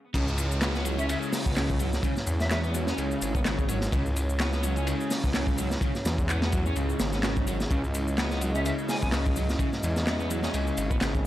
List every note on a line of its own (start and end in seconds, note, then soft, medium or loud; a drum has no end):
0.14 1.16 C#2 loud
0.14 0.24 C#3 medium
0.14 11.27 G#3 medium
0.14 11.27 C#4 medium
0.14 11.27 E4 medium
0.14 7.69 C#5 medium
0.14 kick loud
0.14 crash medium
0.14 ride medium
0.14 downlifter medium
0.14 shaker soft
0.28 shaker soft
0.38 ride medium
0.38 shaker medium
0.52 shaker soft
0.61 0.71 B3 medium
0.61 snare loud
0.61 clap loud
0.61 ride loud
0.61 shaker soft
0.75 0.85 B3 loud
0.75 snare soft
0.75 shaker soft
0.85 0.95 F#3 medium
0.85 ride medium
0.85 shaker medium
0.99 1.08 C#4 medium
0.99 1.05 E5 medium
0.99 ride soft
0.99 shaker soft
1.09 1.45 C#3 medium
1.09 1.18 E5 medium
1.09 ride loud
1.09 shaker soft
1.22 shaker soft
1.33 snare medium
1.33 open hi-hat medium
1.33 shaker medium
1.46 1.99 C#2 medium
1.46 1.50 B3 medium
1.46 kick medium
1.46 shaker soft
1.56 1.79 C#3 medium
1.56 snare loud
1.56 clap loud
1.56 ride medium
1.56 shaker soft
1.70 kick loud
1.70 shaker soft
1.79 1.89 F#3 medium
1.79 ride medium
1.79 shaker medium
1.93 snare soft
1.93 shaker soft
2.03 2.13 C#3 medium
2.03 kick loud
2.03 ride medium
2.03 shaker soft
2.17 snare soft
2.17 shaker soft
2.27 2.93 E2 loud
2.27 ride medium
2.27 shaker medium
2.40 2.47 E5 medium
2.40 snare soft
2.40 shaker soft
2.51 2.60 B3 medium
2.51 2.59 E5 medium
2.51 snare loud
2.51 clap loud
2.51 ride medium
2.51 shaker soft
2.64 2.74 B3 loud
2.64 shaker soft
2.74 2.84 F#3 medium
2.74 ride medium
2.74 shaker medium
2.87 2.97 C#4 medium
2.87 snare medium
2.87 shaker soft
2.98 3.15 C#2 medium
2.98 3.34 C#3 medium
2.98 ride medium
2.98 shaker soft
3.11 shaker soft
3.22 3.88 G#1 medium
3.22 ride medium
3.22 shaker medium
3.35 3.39 B3 medium
3.35 kick medium
3.35 shaker soft
3.45 3.68 C#3 medium
3.45 snare loud
3.45 clap loud
3.45 ride medium
3.45 shaker soft
3.59 kick loud
3.59 shaker soft
3.68 3.78 F#3 medium
3.68 ride medium
3.68 shaker medium
3.81 snare soft
3.81 shaker soft
3.92 4.94 C#2 loud
3.92 4.02 C#3 medium
3.92 kick loud
3.92 ride medium
3.92 shaker soft
4.06 shaker soft
4.16 ride medium
4.16 shaker medium
4.30 shaker soft
4.39 4.49 B3 medium
4.39 snare loud
4.39 clap loud
4.39 ride medium
4.39 shaker soft
4.53 4.63 B3 loud
4.53 snare soft
4.53 shaker soft
4.63 4.73 F#3 medium
4.63 ride medium
4.63 shaker medium
4.76 4.86 C#4 medium
4.76 ride soft
4.76 shaker soft
4.87 5.23 C#3 medium
4.87 ride medium
4.87 shaker soft
5.00 shaker soft
5.11 snare medium
5.11 open hi-hat medium
5.11 shaker medium
5.24 5.76 C#2 medium
5.24 5.28 B3 medium
5.24 kick medium
5.24 shaker soft
5.34 5.57 C#3 medium
5.34 snare loud
5.34 clap loud
5.34 ride medium
5.34 shaker soft
5.47 kick loud
5.47 shaker soft
5.58 5.68 F#3 medium
5.58 ride medium
5.58 shaker medium
5.71 snare soft
5.71 shaker soft
5.81 5.91 C#3 medium
5.81 kick loud
5.81 ride medium
5.81 shaker soft
5.95 snare soft
5.95 shaker soft
6.05 6.71 E2 loud
6.05 snare loud
6.05 ride medium
6.05 shaker medium
6.18 kick medium
6.18 shaker soft
6.29 6.38 B3 medium
6.29 clap loud
6.29 ride medium
6.29 shaker soft
6.42 6.52 B3 loud
6.42 snare loud
6.42 ride medium
6.42 shaker soft
6.52 6.62 F#3 medium
6.52 kick loud
6.52 ride medium
6.52 shaker medium
6.66 6.75 C#4 medium
6.66 shaker soft
6.76 6.93 C#2 medium
6.76 7.12 C#3 medium
6.76 ride medium
6.76 shaker soft
6.89 shaker soft
7.00 7.66 G#1 medium
7.00 snare loud
7.00 ride medium
7.00 shaker medium
7.13 7.18 B3 medium
7.13 snare soft
7.13 shaker soft
7.23 7.46 C#3 medium
7.23 snare loud
7.23 clap loud
7.23 ride loud
7.23 shaker soft
7.37 kick loud
7.37 shaker soft
7.47 7.56 F#3 medium
7.47 ride medium
7.47 shaker medium
7.60 snare medium
7.60 shaker soft
7.71 8.72 C#2 loud
7.71 7.80 C#3 medium
7.71 11.27 D#5 medium
7.71 kick loud
7.71 ride medium
7.71 shaker soft
7.84 shaker soft
7.94 ride medium
7.94 shaker medium
8.08 shaker soft
8.18 8.27 B3 medium
8.18 snare loud
8.18 clap loud
8.18 ride medium
8.18 shaker soft
8.31 8.41 B3 loud
8.31 snare soft
8.31 shaker soft
8.41 8.51 F#3 medium
8.41 ride medium
8.41 shaker medium
8.55 8.64 C#4 medium
8.55 8.61 E5 medium
8.55 ride soft
8.55 shaker soft
8.65 9.01 C#3 medium
8.65 8.74 E5 medium
8.65 ride medium
8.65 shaker soft
8.79 shaker soft
8.89 8.97 G#5 medium
8.89 snare soft
8.89 open hi-hat medium
8.89 shaker medium
9.02 9.55 C#2 medium
9.02 9.07 B3 medium
9.02 9.09 G#5 medium
9.02 kick loud
9.02 shaker soft
9.12 9.35 C#3 medium
9.12 snare loud
9.12 clap loud
9.12 ride medium
9.12 shaker soft
9.26 kick loud
9.26 shaker soft
9.36 9.45 F#3 medium
9.36 ride medium
9.36 shaker medium
9.49 snare soft
9.49 shaker soft
9.59 9.69 C#3 medium
9.59 kick loud
9.59 ride medium
9.59 shaker soft
9.73 snare soft
9.73 shaker soft
9.83 10.49 E2 loud
9.83 ride medium
9.83 shaker medium
9.96 snare soft
9.96 shaker soft
10.07 10.16 B3 medium
10.07 snare loud
10.07 clap loud
10.07 ride medium
10.07 shaker soft
10.20 10.29 B3 loud
10.20 shaker soft
10.30 10.40 F#3 medium
10.30 ride medium
10.30 shaker medium
10.43 10.53 C#4 medium
10.43 snare medium
10.43 shaker soft
10.54 10.71 C#2 medium
10.54 10.90 C#3 medium
10.54 ride medium
10.54 shaker soft
10.67 shaker soft
10.77 11.27 G#1 medium
10.77 ride medium
10.77 shaker medium
10.91 10.95 B3 medium
10.91 kick loud
10.91 shaker soft
11.00 11.24 C#3 medium
11.00 snare loud
11.00 clap loud
11.00 ride medium
11.00 shaker soft
11.15 kick loud
11.15 shaker soft